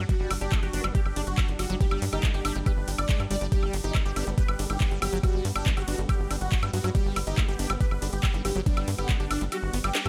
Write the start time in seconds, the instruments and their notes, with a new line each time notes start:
Already playing: synth texture G3 D4
0.09 acid bass G3, supersaw synth F#4, kick, closed hi-hat, ride
0.20 analog synth bass G1, acid bass G3
0.31 analog synth bass G1, acid bass F#3, open hi-hat, ride, high woodblock
0.41 analog synth bass G1, supersaw synth D4, acid bass G4, closed hi-hat
0.52 acid bass G3, kick, clap, closed hi-hat, ride, high woodblock
0.63 analog synth bass G1, supersaw synth F#4, acid bass G4, closed hi-hat
0.73 analog synth bass G1, wobble bass B3, acid bass D4, open hi-hat, ride
0.84 analog synth bass G1, acid bass G3, closed hi-hat, high woodblock
0.95 acid bass G4, supersaw synth G4, kick, closed hi-hat, ride
1.06 analog synth bass G1, high woodblock
1.16 analog synth bass G1, wobble bass G3, acid bass D4, open hi-hat, ride
1.27 analog synth bass G1, supersaw synth F#4, closed hi-hat
1.38 kick, clap, closed hi-hat, ride, high woodblock
1.48 analog synth bass G1, wobble bass D3, closed hi-hat
1.59 analog synth bass G1, wobble bass D3, acid bass F#3, supersaw synth F#4, open hi-hat, ride, high woodblock
1.70 analog synth bass G1, acid bass F#3, closed hi-hat
1.81 acid bass G3, supersaw synth G4, kick, closed hi-hat, ride
1.91 analog synth bass G1, acid bass G3, high woodblock
2.02 analog synth bass G2, acid bass F#3, open hi-hat, ride
2.13 analog synth bass G1, wobble bass D3, supersaw synth D#4, acid bass G4, closed hi-hat, high woodblock
2.23 acid bass G3, kick, clap, closed hi-hat, ride
2.34 analog synth bass G1, supersaw synth G4, acid bass G4, closed hi-hat
2.45 analog synth bass G1, acid bass D4, open hi-hat, ride, high woodblock
2.56 analog synth bass G1, acid bass G3, closed hi-hat
2.66 acid bass G4, supersaw synth B4, kick, closed hi-hat, ride, high woodblock
2.77 analog synth bass G1
2.88 analog synth bass G1, acid bass G4, open hi-hat, ride
2.98 analog synth bass G1, supersaw synth D5, closed hi-hat, high woodblock
3.09 acid bass G#3, kick, clap, closed hi-hat, ride
3.20 analog synth bass G2, acid bass F#3, closed hi-hat, high woodblock
3.31 analog synth bass G1, acid bass G3, supersaw synth D5, open hi-hat, ride
3.41 analog synth bass G1, acid bass G3, closed hi-hat
3.52 acid bass G3, synth texture B3, supersaw synth G4, kick, closed hi-hat, ride
3.63 analog synth bass G1, high woodblock
3.73 analog synth bass G1, acid bass F#3, open hi-hat, ride
3.84 analog synth bass G1, supersaw synth D#4, acid bass G4, closed hi-hat
3.95 acid bass G3, kick, clap, closed hi-hat, ride, high woodblock
4.05 analog synth bass G1, supersaw synth G4, acid bass G4, closed hi-hat
4.16 analog synth bass G1, wobble bass B3, acid bass D4, open hi-hat, ride, high woodblock
4.27 analog synth bass G1, acid bass G3, closed hi-hat
4.38 acid bass G4, supersaw synth B4, kick, closed hi-hat, ride
4.48 analog synth bass G1, high woodblock
4.59 analog synth bass G1, wobble bass G3, acid bass D4, open hi-hat, ride
4.70 analog synth bass G1, wobble bass D3, supersaw synth G4, closed hi-hat, high woodblock
4.80 wobble bass D3, kick, clap, closed hi-hat, ride
4.91 analog synth bass G1, acid bass G3, closed hi-hat
5.02 analog synth bass G1, acid bass F#3, supersaw synth G4, open hi-hat, ride, high woodblock
5.13 analog synth bass G1, acid bass F#3, closed hi-hat
5.23 acid bass G3, supersaw synth F#4, kick, closed hi-hat, ride, high woodblock
5.34 analog synth bass G1
5.45 analog synth bass G2, acid bass F#3, open hi-hat, ride
5.56 analog synth bass G1, supersaw synth D4, acid bass G4, closed hi-hat, high woodblock
5.66 acid bass G3, kick, clap, closed hi-hat, ride
5.77 analog synth bass G1, supersaw synth F#4, acid bass G4, closed hi-hat, high woodblock
5.88 analog synth bass G1, wobble bass D3, acid bass D4, open hi-hat, ride
5.98 analog synth bass G1, acid bass G3, closed hi-hat
6.09 acid bass G4, supersaw synth G4, kick, closed hi-hat, ride, high woodblock
6.20 analog synth bass G1
6.30 analog synth bass G1, acid bass D4, open hi-hat, ride, high woodblock
6.41 analog synth bass G1, supersaw synth F#4, closed hi-hat
6.52 kick, clap, closed hi-hat, ride
6.63 analog synth bass G2, acid bass G3, closed hi-hat, high woodblock
6.73 analog synth bass G2, acid bass F#3, supersaw synth F#4, open hi-hat, ride
6.84 analog synth bass G2, acid bass F#3, closed hi-hat, high woodblock
6.95 acid bass G3, supersaw synth G4, kick, closed hi-hat, ride
7.06 analog synth bass G1
7.16 analog synth bass G1, acid bass F#3, open hi-hat, ride, high woodblock
7.27 analog synth bass G1, supersaw synth D#4, acid bass G4, closed hi-hat
7.38 acid bass G3, kick, clap, closed hi-hat, ride, high woodblock
7.48 analog synth bass G1, acid bass G4, supersaw synth G4, closed hi-hat
7.59 analog synth bass G1, wobble bass B3, acid bass D4, open hi-hat, ride
7.70 analog synth bass G1, acid bass G3, closed hi-hat, high woodblock
7.81 acid bass G4, supersaw synth B4, kick, closed hi-hat, ride
7.91 analog synth bass G1, high woodblock
8.02 analog synth bass G1, wobble bass G3, acid bass D4, open hi-hat, ride
8.13 analog synth bass G1, supersaw synth G4, closed hi-hat
8.23 kick, clap, closed hi-hat, ride, high woodblock
8.34 analog synth bass G1, wobble bass D3, acid bass G3, closed hi-hat
8.45 analog synth bass G1, wobble bass D3, acid bass F#3, supersaw synth G4, open hi-hat, ride, high woodblock
8.56 analog synth bass G1, acid bass F#3, closed hi-hat
8.66 acid bass G3, supersaw synth D4, kick, closed hi-hat, ride
8.77 analog synth bass G1, closed hi-hat, high woodblock
8.88 analog synth bass G2, acid bass F#3, open hi-hat, ride
8.98 analog synth bass G1, wobble bass D3, supersaw synth B3, acid bass G4, closed hi-hat, high woodblock
9.09 acid bass G3, kick, clap, closed hi-hat, ride
9.20 analog synth bass G1, supersaw synth D4, acid bass G4, closed hi-hat
9.31 analog synth bass G1, acid bass D4, open hi-hat, ride, high woodblock
9.41 analog synth bass G1, acid bass G3, closed hi-hat
9.52 supersaw synth F#4, acid bass G4, closed hi-hat, ride, high woodblock
9.63 analog synth bass G1
9.73 analog synth bass G1, acid bass B3, open hi-hat, ride
9.84 analog synth bass G1, acid bass G3, supersaw synth G4, closed hi-hat, high woodblock
9.95 acid bass D4, snare, clap, closed hi-hat, ride
10.06 analog synth bass G2, acid bass G3, closed hi-hat, high woodblock